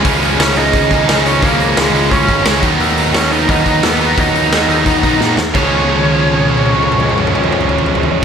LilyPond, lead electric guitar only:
\new Staff \with { instrumentName = "Lead electric guitar" } { \time 4/4 \key des \major \tempo 4 = 174 r4 <des' des''>8 <ees' ees''>2 <des' des''>8 | <bes bes'>4 <aes aes'>4 <des' des''>4 r4 | r4 <des' des''>8 <ees' ees''>8 <ees' ees''>4 <ces' ces''>4 | <ees' ees''>2. r4 |
des''1~ | des''1 | }